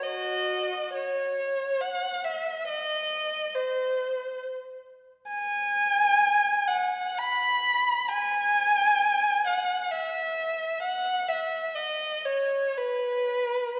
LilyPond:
\new Staff \with { instrumentName = "Violin" } { \time 3/4 \key cis \minor \tempo 4 = 67 <fis' dis''>4 cis''4 fis''8 e''8 | dis''4 bis'4 r4 | \key e \major gis''4. fis''8 b''4 | gis''4. fis''8 e''4 |
fis''8 e''8 dis''8 cis''8 b'4 | }